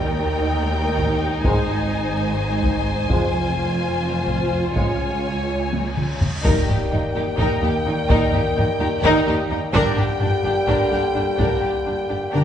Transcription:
Already playing: cello section D#2, double bass section D#2, viola section D#4, violin section A#4 G5
0.99 taiko
1.43 double bass section G#1, cello section G#2, trombone section D#3 G#3, french horn section C4 G#4, violin section C5 G#5, taiko
2.63 taiko
3.09 double bass section F1, cello section F2, trombone section F3 G#3, french horn section C4 G#4, viola section F4, taiko
4.27 taiko
4.73 cello section C#2, double bass section C#2, trombone section F3 G#3, french horn section C#4 G#4, violin section C#5 G#5, taiko, cymbal swell
5.73 taiko high
5.97 taiko mid
6.21 taiko low
6.43 cello section D#2, double bass section D#2, trombone section D#3 G3, french horn section A#3 A#4, viola section D#4, violin section A#4 G5, taiko, impact
6.68 cello section D#2, double bass section D#2, viola section D#4, violin section G4, taiko low-mid
6.91 cello section D#2, double bass section D#2, viola section D#4, violin section D#4, taiko low-mid
7.15 double bass section D#2, cello section D#2, viola section D#4, violin section G4
7.38 double bass section D#2, cello section D#2, viola section D#4, violin section A#4, taiko
7.62 cello section D#2, double bass section D#2, viola section D#4, violin section G4
7.85 double bass section D#2, cello section D#2, viola section D#4, violin section D#4
8.09 double bass section D#2, cello section D#2, viola section D#4, violin section A#4, taiko
8.32 cello section D#2, double bass section D#2, viola section D#4, violin section G4, taiko low-mid
8.56 double bass section D#2, cello section D#2, violin section D#4, viola section D#4, taiko low-mid
8.79 double bass section D#2, cello section D#2, viola section D#4, violin section G4
9.03 double bass section D#2, cello section D#2, viola section D#4, violin section A#4, taiko
9.26 double bass section D#2, cello section D#2, viola section D#4, violin section G4
9.50 double bass section D#2, cello section D#2, violin section D#4, viola section D#4
9.73 double bass section G1, cello section G2, trombone section D3 G3, french horn section A#3 G4, viola section D4, violin section A#4 G5, taiko
9.97 double bass section G1, cello section G2, viola section D4, violin section G4, taiko low-mid
10.21 double bass section G1, cello section G2, violin section D4, viola section D4, taiko low-mid
10.43 double bass section G1, cello section G2, viola section D4, violin section G4
10.67 double bass section G1, cello section G2, viola section D4, violin section A#4, taiko
10.91 double bass section G1, cello section G2, viola section D4, violin section G4
11.15 double bass section G1, cello section G2, viola section D4, violin section D4
11.38 double bass section G1, cello section G2, viola section D4, violin section A#4, taiko
11.62 double bass section G1, cello section G2, viola section D4, violin section G4
11.86 double bass section G1, cello section G2, viola section D4, violin section D4
12.09 double bass section G1, cello section G2, viola section D4, violin section G4
12.33 double bass section G1, cello section G2, viola section D4, violin section A#4, taiko mid

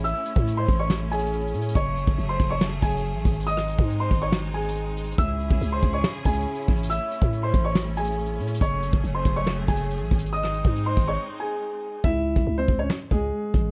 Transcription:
Already playing: 808-style bass A1, string section C#4 E4
0.04 string section A3, grand piano E5 E6, closed hi-hat
0.25 closed hi-hat
0.36 808-style bass A2, kick
0.47 closed hi-hat
0.57 grand piano C5 C6
0.68 808-style bass A1, kick, closed hi-hat
0.79 grand piano C#5 C#6
0.90 cross-stick, snare
1.11 grand piano G#4 G#5, closed hi-hat
1.18 closed hi-hat
1.25 closed hi-hat
1.33 closed hi-hat
1.40 closed hi-hat
1.47 closed hi-hat
1.54 808-style bass A2, closed hi-hat
1.61 closed hi-hat
1.68 closed hi-hat
1.75 808-style bass F#1, string section F#3 A3 G#4, grand piano C#5 C#6, kick
1.96 closed hi-hat
2.07 808-style bass F#1, kick
2.18 808-style bass F#1, closed hi-hat
2.29 grand piano C5 C6
2.39 808-style bass F#1, kick, closed hi-hat
2.50 grand piano C#5 C#6
2.61 snare
2.82 808-style bass F#1, grand piano G#4 G#5, kick, closed hi-hat
2.90 closed hi-hat
2.97 closed hi-hat
3.04 closed hi-hat
3.11 808-style bass A1, closed hi-hat
3.18 closed hi-hat
3.25 808-style bass G#1, kick, closed hi-hat
3.32 closed hi-hat
3.40 closed hi-hat
3.47 string section G#3 C4 D#4, grand piano D#5 D#6, closed hi-hat
3.58 cross-stick
3.68 closed hi-hat
3.79 808-style bass G#2, kick
3.90 closed hi-hat
4.00 grand piano C5 C6
4.11 808-style bass G#1, kick, closed hi-hat
4.22 grand piano C#5 C#6
4.32 snare
4.54 grand piano G#4 G#5, closed hi-hat
4.61 closed hi-hat
4.68 closed hi-hat
4.75 closed hi-hat
4.96 closed hi-hat, open hi-hat
5.04 closed hi-hat
5.11 closed hi-hat
5.18 808-style bass C#2, string section C#3 C#4 E4 G#4, grand piano E5 E6, kick, closed hi-hat
5.39 closed hi-hat
5.50 808-style bass C2, kick
5.61 808-style bass C#2, closed hi-hat
5.72 grand piano C5 C6
5.82 808-style bass C#2, kick, closed hi-hat
5.93 grand piano C#5 C#6
6.04 cross-stick, snare
6.25 808-style bass C#2, grand piano G#4 G#5, kick, closed hi-hat
6.33 closed hi-hat
6.40 closed hi-hat
6.47 closed hi-hat
6.54 closed hi-hat
6.61 closed hi-hat
6.68 808-style bass A1, kick, closed hi-hat
6.75 closed hi-hat
6.83 closed hi-hat
6.90 string section A3, grand piano E5 E6, closed hi-hat
7.11 closed hi-hat
7.22 808-style bass A2, kick
7.33 closed hi-hat
7.43 grand piano C5 C6
7.54 808-style bass A1, kick, closed hi-hat
7.65 grand piano C#5 C#6
7.75 snare
7.97 grand piano G#4 G#5, closed hi-hat
8.04 closed hi-hat
8.11 closed hi-hat
8.18 closed hi-hat
8.25 closed hi-hat
8.33 closed hi-hat
8.40 808-style bass A2, closed hi-hat
8.47 closed hi-hat
8.54 closed hi-hat
8.61 808-style bass F#1, string section F#3 A3 G#4, grand piano C#5 C#6, kick, closed hi-hat
8.82 closed hi-hat
8.93 808-style bass F#1, kick
9.04 808-style bass F#1, closed hi-hat
9.15 grand piano C5 C6
9.25 808-style bass F#1, kick, closed hi-hat
9.36 grand piano C#5 C#6
9.47 snare
9.68 808-style bass F#1, grand piano G#4 G#5, kick, closed hi-hat
9.75 closed hi-hat
9.83 closed hi-hat
9.90 closed hi-hat
9.97 808-style bass A1, closed hi-hat
10.04 closed hi-hat
10.11 808-style bass G#1, kick, closed hi-hat
10.18 closed hi-hat
10.25 closed hi-hat
10.32 string section G#3 C4 D#4, grand piano D#5 D#6, closed hi-hat
10.43 cross-stick
10.54 closed hi-hat
10.65 808-style bass G#2, kick
10.76 closed hi-hat
10.86 grand piano C5 C6
10.96 808-style bass G#1, kick, closed hi-hat
11.08 grand piano C#5 C#6
11.40 grand piano G#4 G#5
12.04 808-style bass C#2, grand piano E4 E5, kick
12.36 808-style bass C2, kick
12.47 808-style bass C#2
12.58 grand piano C4 C5
12.68 808-style bass C#2, kick
12.79 grand piano C#4 C#5
12.90 snare
13.11 808-style bass C#2, grand piano G#3 G#4, kick
13.54 808-style bass A1, kick

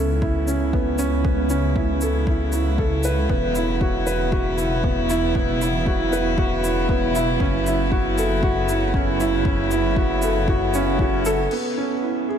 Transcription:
Already playing: detuned saw bass C#2, string quartet C#3 F#3 B3 E4, felt piano C#4 E4 A4
0.22 felt piano E4, kick
0.48 felt piano C#4, shaker
0.73 felt piano B3, kick
0.98 felt piano C#4, shaker
1.25 felt piano B3, kick
1.50 felt piano C#4, shaker
1.76 felt piano E4, kick
2.01 felt piano A4, shaker
2.27 felt piano E4, kick
2.52 felt piano E4, shaker
2.78 felt piano A4, kick
3.03 felt piano B4, shaker
3.29 detuned saw bass E1, felt piano B3, kick
3.55 felt piano E4, shaker
3.81 felt piano F#4, kick
4.07 felt piano B4, shaker
4.32 felt piano F#4, kick
4.58 felt piano E4, shaker
4.84 felt piano B3, kick
5.10 felt piano E4, shaker
5.35 felt piano B3, kick
5.61 felt piano E4, shaker
5.86 felt piano F#4, kick
6.13 felt piano B4, shaker
6.38 felt piano F#4, kick
6.64 felt piano E4, shaker
6.89 felt piano B3, kick
7.15 felt piano E4, shaker
7.40 detuned saw bass F#1, felt piano C#4, kick
7.67 felt piano E4, shaker
7.92 felt piano F#4, kick
8.18 felt piano A4, shaker
8.43 felt piano F#4, kick
8.69 felt piano E4, shaker
8.94 felt piano C#4, kick
9.20 felt piano E4, shaker
9.45 felt piano C#4, kick
9.71 felt piano E4, shaker
9.96 felt piano F#4, kick
10.22 felt piano A4, shaker
10.48 felt piano F#4, kick
10.74 felt piano C#4, shaker
10.99 felt piano F#4, kick
11.25 felt piano A4, shaker
11.51 felt piano B3, crash
11.77 felt piano C#4
12.02 felt piano E4
12.29 felt piano G#4

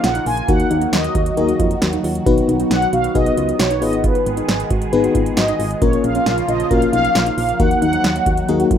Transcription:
Already playing: analog synth pad C#3 F3 A#3 F4, fm electric piano A#3 C#4 F4 A#4
0.04 fm bass A#1, synth arpeggio sound F4, analog polysynth F#5, snare, closed hi-hat
0.15 synth arpeggio sound D#4, closed hi-hat
0.26 fm bass A#1, synth arpeggio sound F4, analog polysynth G#5, open hi-hat
0.37 closed hi-hat
0.48 fm bass D#2, analog synth pad D#3 F#3 F#4, fm electric piano A#3 D#4 F#4 A#4, synth arpeggio sound F#4, analog polysynth F#5, kick, closed hi-hat
0.60 closed hi-hat
0.71 fm bass D#2, synth arpeggio sound D#4, closed hi-hat
0.82 synth arpeggio sound D#4, closed hi-hat
0.93 fm bass D#2, analog polysynth D#5, snare, closed hi-hat
1.04 closed hi-hat
1.15 fm bass D#2, synth arpeggio sound F#4, kick, closed hi-hat
1.26 closed hi-hat
1.37 fm bass D#2, fm electric piano A#3 D#4 F#4 A#4, synth arpeggio sound G#4, analog polysynth D#5, closed hi-hat
1.49 synth arpeggio sound F#4, closed hi-hat
1.60 fm bass F2, synth arpeggio sound F4, kick, closed hi-hat
1.71 closed hi-hat
1.82 fm bass D#2, synth arpeggio sound F#4, snare, closed hi-hat
1.93 synth arpeggio sound D#4, closed hi-hat
2.04 fm bass D#2, synth arpeggio sound F4, open hi-hat
2.15 closed hi-hat
2.26 fm bass B1, analog synth pad B3, fm electric piano B3 D#4 F#4 B4, synth arpeggio sound F#4, kick, closed hi-hat
2.38 closed hi-hat
2.49 fm bass B1, synth arpeggio sound D#4, closed hi-hat
2.60 synth arpeggio sound D#4, closed hi-hat
2.71 fm bass B1, analog polysynth F#5, snare, closed hi-hat
2.82 closed hi-hat
2.93 fm bass B1, synth arpeggio sound F#4, analog polysynth F5, closed hi-hat
3.04 closed hi-hat
3.15 fm bass B1, fm electric piano B3 D#4 F#4 B4, synth arpeggio sound G#4, analog polysynth D#5, kick, closed hi-hat
3.26 synth arpeggio sound F#4, closed hi-hat
3.37 fm bass C#2, synth arpeggio sound F4, closed hi-hat
3.49 closed hi-hat
3.59 fm bass B1, synth arpeggio sound F#4, analog polysynth C#5, snare, closed hi-hat
3.71 synth arpeggio sound D#4, closed hi-hat
3.82 fm bass G#1, analog synth pad D#3 G#3 G#4, fm electric piano B3 D#4 G#4 B4, synth arpeggio sound F4, analog polysynth D#5, open hi-hat
3.93 closed hi-hat
4.04 synth arpeggio sound F4, analog polysynth B4, kick, closed hi-hat
4.15 closed hi-hat
4.26 fm bass G#1, synth arpeggio sound D#4, closed hi-hat
4.37 synth arpeggio sound D#4, closed hi-hat
4.49 fm bass G#1, snare, closed hi-hat
4.60 closed hi-hat
4.70 fm bass G#1, synth arpeggio sound F#4, kick, closed hi-hat
4.82 closed hi-hat
4.93 fm bass G#1, fm electric piano B3 D#4 G#4 B4, synth arpeggio sound G#4, closed hi-hat
5.04 synth arpeggio sound F#4, closed hi-hat
5.15 fm bass G#1, synth arpeggio sound F4, kick, closed hi-hat
5.26 closed hi-hat
5.37 fm bass G#1, synth arpeggio sound F#4, analog polysynth D#5, snare, closed hi-hat
5.48 synth arpeggio sound D#4, closed hi-hat
5.59 fm bass G#1, synth arpeggio sound F4, open hi-hat
5.71 closed hi-hat
5.82 fm bass A#1, analog synth pad C#3 F3 A#3 F4, fm electric piano A#3 C#4 F4 A#4, synth arpeggio sound F4, analog polysynth C#5, kick, closed hi-hat
5.93 closed hi-hat
6.04 fm bass A#1, synth arpeggio sound C#4, analog polysynth F5, closed hi-hat
6.15 synth arpeggio sound C#4, closed hi-hat
6.26 fm bass A#1, snare, closed hi-hat
6.38 closed hi-hat
6.48 fm bass A#1, synth arpeggio sound F4, analog polysynth D#5, closed hi-hat
6.60 closed hi-hat
6.70 fm bass A#1, fm electric piano A#3 C#4 F4 A#4, synth arpeggio sound F#4, analog polysynth F5, kick, closed hi-hat
6.82 synth arpeggio sound F4, closed hi-hat
6.93 fm bass B1, synth arpeggio sound D#4, analog polysynth F5, closed hi-hat
7.05 closed hi-hat
7.15 fm bass A#1, synth arpeggio sound F4, snare, closed hi-hat
7.26 synth arpeggio sound D#4, closed hi-hat
7.37 fm bass A#1, synth arpeggio sound F4, analog polysynth F5, open hi-hat
7.49 closed hi-hat
7.59 fm bass D#2, analog synth pad D#3 F#3 F#4, fm electric piano A#3 D#4 F#4 A#4, synth arpeggio sound F#4, analog polysynth F#5, kick, closed hi-hat
7.71 closed hi-hat
7.82 fm bass D#2, synth arpeggio sound D#4, analog polysynth F#5, closed hi-hat
7.93 synth arpeggio sound D#4, closed hi-hat
8.04 fm bass D#2, snare, closed hi-hat
8.16 closed hi-hat
8.26 fm bass D#2, synth arpeggio sound F#4, kick, closed hi-hat
8.37 closed hi-hat
8.49 fm bass D#2, fm electric piano A#3 D#4 F#4 A#4, synth arpeggio sound G#4, closed hi-hat
8.60 synth arpeggio sound F#4, closed hi-hat
8.71 fm bass F2, synth arpeggio sound F4, kick, closed hi-hat

